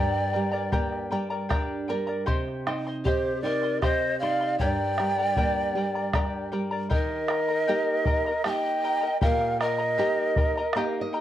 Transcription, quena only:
Already playing: G5
3.05 C5 D5
3.41 D5
3.82 D#5 F5
4.20 F5
4.59 G5
6.95 D#5
8.45 A5
8.50 G5
9.22 F5
9.61 D#5

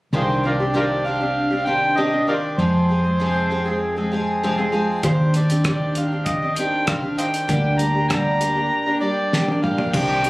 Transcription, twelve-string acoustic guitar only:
0.13 C3 D#3 C4 D4 G4
0.43 D#3 C4 D4 G4
0.60 C4 D4 G4
0.74 C3 D#3 C4 D4 G4
1.05 D#3 C4 D4 G4
1.21 C4 D4 G4
1.51 C4 D4 G4
1.66 D#3 C4 D4 G4
1.97 C3 D#3 C4 D4 G4
2.12 C4 D4 G4
2.27 D#3 C4 D4 G4
2.59 F2 C3 F3 G#3 C4 G#4
2.89 F3 G#3 C4 G#4
3.04 F3 G#3 C4 G#4
3.20 F2 C3 F3 G#3 C4 G#4
3.50 F3 G#3 C4 G#4
3.65 F3 G#3 C4 G#4
3.96 F3 G#3 C4 G#4
4.11 F3 G#3 C4 G#4
4.43 F2 C3 F3 G#3 C4 G#4
4.58 F3 G#3 C4 G#4
4.72 F3 G#3 C4 G#4
5.03 D#3 C4 D4 G4
5.34 D#3 C4 D4 G4
5.49 C4 D4 G4
5.66 D#3 C4 D4 G4
5.96 D#3 C4 D4 G4
6.11 C4 D4 G4
6.42 C4 D4 G4
6.57 D#3 C4 D4 G4
6.87 D#3 C4 D4 G4
7.02 C4 D4 G4
7.17 D#3 C4 D4 G4
7.48 D3 G3 A#3 D4 G4
7.79 G3 A#3 D4 G4
7.95 A#3 D4 G4
8.09 D3 G3 A#3 D4 G4
8.40 G3 A#3 D4 G4
8.56 A#3 D4 G4
8.86 A#3 D4 G4
9.01 G3 A#3 D4 G4
9.33 D3 G3 A#3 D4 G4
9.47 A#3 D4 G4
9.62 G3 A#3 D4 G4
9.77 A#3 D4 G4
9.93 C3 D#3 C4 D4 G4
10.23 D#3 C4 D4 G4

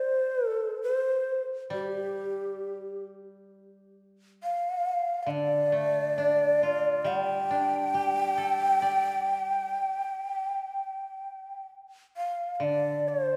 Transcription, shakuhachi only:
Already playing: C5
0.51 A4
0.83 C5
1.73 G4
4.43 F5
5.23 F5
5.31 D5
7.07 G5
12.17 F5
12.55 F5
12.64 D5
13.08 C5

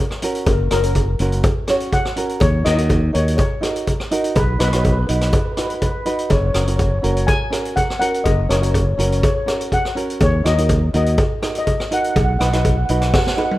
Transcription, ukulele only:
0.22 C#4 F#4 A#4
0.71 C#4 F#4 A#4
0.83 C#4 F#4 A#4
1.20 C#4 F#4 A#4
1.68 C#4 F#4 C#5
2.16 C#4 F#4 A#4
2.64 D#4 F#4 A#4
2.76 D#4 F#4 A#4
3.13 D#4 F#4 A#4
3.61 D#4 F#4 A#4
4.11 D#4 F#4 A#4
4.59 D#4 F#4 B4
4.72 D#4 F#4 C#5
5.08 D#4 F#4 B4
5.57 D#4 F#4 B4
6.05 D#4 F#4 B4
6.54 C#4 F#4 A#4
6.66 C#4 F#4 A#4
7.02 C#4 F#4 A#4
7.50 C#4 F#4 A#4
7.99 C#4 F#4 A#4
8.49 C#4 F#4 A#4
8.60 C#4 F#4 A#4
8.97 C#4 F#4 A#4
9.46 C#4 F#4 A#4
9.95 C#4 F#4 A#4
10.44 D#4 F#4 A#4
10.57 D#4 F#4 A#4
10.93 D#4 F#4 A#4
11.42 D#4 F#4 A#4
11.91 D#4 F#4 A#4
12.40 D#4 F#4 B4
12.53 D#4 F#4 B4
12.89 D#4 F#4 B4
13.37 D#4 F#4 B4

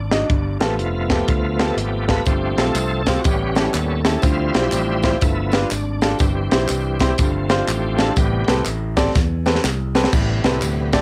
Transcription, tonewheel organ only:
Already playing: D4
0.60 F3 A3 B3
0.78 F4
1.09 G4
1.27 F4
1.67 A4
1.77 G4
2.08 B4
2.26 F3 A3 C4 G4
2.57 A4
3.19 F#4
3.25 G3 B3 C#4 G4
3.65 E4
3.73 A4
4.22 F3 G3 C4 E4 F4
4.53 G4
5.21 F3 A3 B3 E4
5.63 F4
5.71 D4
6.12 G4
6.19 E3 G3 C4
7.18 F3 A3 C4
7.69 G4
8.01 A4
8.12 A4
8.16 C3 G3 B3 G4
10.12 C3 G3 B3

